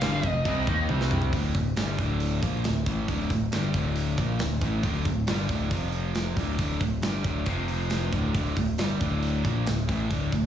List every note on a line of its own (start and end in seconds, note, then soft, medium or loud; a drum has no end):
0.00 0.22 G1 loud
0.00 0.23 G2 loud
0.00 0.23 D3 medium
0.00 0.88 F3 medium
0.00 0.23 G3 loud
0.00 0.88 C4 medium
0.00 0.88 G4 medium
0.00 0.27 F5 medium
0.00 0.88 F5 medium
0.00 snare loud
0.00 crash medium
0.23 0.44 F1 medium
0.23 0.41 F2 medium
0.23 0.41 C3 medium
0.23 0.85 D#5 medium
0.23 kick medium
0.45 0.66 C2 medium
0.45 0.66 C3 medium
0.45 0.66 G3 loud
0.45 0.67 C4 loud
0.45 kick loud
0.45 crash medium
0.67 0.88 D#2 loud
0.67 0.88 D#3 medium
0.67 0.89 A#3 loud
0.67 0.89 D#4 loud
0.67 kick loud
0.89 1.30 C2 loud
0.89 1.32 C3 loud
0.89 1.33 C3 medium
0.89 1.32 G3 medium
0.89 1.33 G3 medium
0.89 1.33 C4 loud
0.89 1.33 D4 medium
0.89 1.33 C5 medium
0.89 high tom medium
1.01 snare medium
1.11 mid tom loud
1.22 floor tom medium
1.33 1.53 D1 loud
1.33 1.53 D2 medium
1.33 1.54 A2 loud
1.33 1.55 D3 loud
1.33 kick loud
1.33 open hi-hat medium
1.55 1.75 D1 medium
1.55 1.72 D2 medium
1.55 1.73 A2 medium
1.55 kick medium
1.55 open hi-hat medium
1.76 1.97 G1 medium
1.76 1.98 G2 medium
1.76 1.99 D3 loud
1.76 1.99 G3 loud
1.76 snare loud
1.76 open hi-hat medium
1.98 2.40 D1 medium
1.98 2.42 D2 medium
1.98 2.43 A2 medium
1.98 2.43 D3 medium
1.98 kick loud
1.98 open hi-hat medium
2.20 open hi-hat medium
2.43 2.63 A#1 loud
2.43 2.64 A#2 medium
2.43 2.64 F3 medium
2.43 2.65 A#3 medium
2.43 kick loud
2.43 open hi-hat medium
2.64 2.85 D1 medium
2.64 2.82 D2 medium
2.64 2.83 A2 medium
2.64 snare loud
2.64 open hi-hat medium
2.86 3.07 A1 loud
2.86 3.08 A2 loud
2.86 3.08 E3 loud
2.86 3.08 A3 loud
2.86 kick loud
2.86 open hi-hat medium
3.08 3.29 D1 loud
3.08 3.29 D2 loud
3.08 3.30 A2 medium
3.08 3.30 D3 loud
3.08 kick loud
3.08 open hi-hat medium
3.30 3.51 D1 medium
3.30 3.48 D2 medium
3.30 3.48 A2 medium
3.30 kick medium
3.30 open hi-hat medium
3.52 3.73 G1 medium
3.52 3.73 G2 medium
3.52 3.74 D3 loud
3.52 3.74 G3 loud
3.52 snare loud
3.52 open hi-hat medium
3.74 4.15 D1 medium
3.74 4.17 D2 medium
3.74 4.17 A2 medium
3.74 4.18 D3 medium
3.74 kick loud
3.74 open hi-hat medium
3.96 open hi-hat medium
4.17 4.39 A#1 loud
4.17 4.39 A#2 medium
4.17 4.39 F3 loud
4.17 4.40 A#3 loud
4.17 kick loud
4.17 open hi-hat medium
4.39 4.61 D1 medium
4.39 4.57 D2 medium
4.39 4.58 A2 medium
4.39 snare loud
4.39 open hi-hat medium
4.61 4.82 A1 medium
4.61 4.83 A2 medium
4.61 4.83 E3 loud
4.61 4.84 A3 loud
4.61 kick loud
4.61 open hi-hat medium
4.83 5.04 D1 medium
4.83 5.04 D2 medium
4.83 5.04 A2 medium
4.83 5.06 D3 loud
4.83 kick loud
4.83 open hi-hat medium
5.05 5.26 D1 medium
5.05 5.23 D2 medium
5.05 5.23 A2 medium
5.05 kick loud
5.05 open hi-hat medium
5.27 5.49 G1 medium
5.27 5.49 G2 loud
5.27 5.49 D3 loud
5.27 5.49 G3 loud
5.27 snare loud
5.27 open hi-hat medium
5.49 5.70 D1 medium
5.49 5.70 D2 medium
5.49 5.70 A2 medium
5.49 5.71 D3 medium
5.49 kick loud
5.49 open hi-hat medium
5.70 6.34 F1 medium
5.70 6.36 F2 loud
5.70 6.36 C3 medium
5.70 6.37 F3 loud
5.70 kick loud
5.70 open hi-hat medium
5.92 open hi-hat medium
6.15 snare loud
6.15 open hi-hat medium
6.37 6.58 D1 loud
6.37 6.57 D2 medium
6.37 6.57 A2 loud
6.37 6.58 D3 loud
6.37 kick loud
6.37 open hi-hat medium
6.58 6.80 D1 medium
6.58 6.79 D2 loud
6.58 6.79 A2 medium
6.58 6.81 D3 medium
6.58 kick loud
6.58 open hi-hat medium
6.80 7.02 D1 medium
6.80 6.99 D2 medium
6.80 6.99 A2 medium
6.80 kick medium
6.80 open hi-hat medium
7.02 7.24 G1 medium
7.02 7.23 G2 medium
7.02 7.23 D3 loud
7.02 7.24 G3 loud
7.02 snare loud
7.02 open hi-hat medium
7.24 7.46 D1 medium
7.24 7.46 D2 medium
7.24 7.46 A2 medium
7.24 7.47 D3 medium
7.24 kick loud
7.24 open hi-hat medium
7.46 8.09 F1 medium
7.46 8.12 F2 medium
7.46 8.12 C3 loud
7.46 8.12 F3 loud
7.46 kick loud
7.46 open hi-hat medium
7.68 open hi-hat medium
7.90 snare loud
7.90 open hi-hat medium
8.12 8.33 D1 medium
8.12 8.33 D2 loud
8.12 8.33 A2 loud
8.12 8.34 D3 loud
8.12 kick loud
8.12 open hi-hat medium
8.34 8.55 D1 loud
8.34 8.55 D2 medium
8.34 8.55 A2 medium
8.34 8.56 D3 loud
8.34 kick loud
8.34 open hi-hat medium
8.56 8.77 D1 medium
8.56 8.74 D2 medium
8.56 8.74 A2 medium
8.56 kick medium
8.56 open hi-hat medium
8.78 9.00 G1 medium
8.78 9.00 G2 loud
8.78 9.00 D3 loud
8.78 9.00 G3 loud
8.78 snare loud
8.78 open hi-hat medium
9.00 9.42 D1 medium
9.00 9.44 D2 medium
9.00 9.44 A2 medium
9.00 9.45 D3 loud
9.00 kick loud
9.00 open hi-hat medium
9.23 open hi-hat medium
9.45 9.65 A#1 loud
9.45 9.66 A#2 medium
9.45 9.67 F3 medium
9.45 9.67 A#3 medium
9.45 kick loud
9.45 open hi-hat medium
9.66 9.88 D1 medium
9.66 9.84 D2 medium
9.66 9.85 A2 medium
9.66 snare loud
9.66 open hi-hat medium
9.89 10.09 A1 medium
9.89 10.09 A2 loud
9.89 10.10 E3 loud
9.89 10.11 A3 loud
9.89 kick loud
9.89 open hi-hat medium
10.10 10.31 D1 loud
10.10 10.31 D2 loud
10.10 10.32 A2 loud
10.10 10.32 D3 loud
10.10 kick loud
10.10 open hi-hat medium
10.32 10.46 D1 medium
10.32 10.46 D2 medium
10.32 10.46 A2 medium
10.32 kick medium
10.32 open hi-hat medium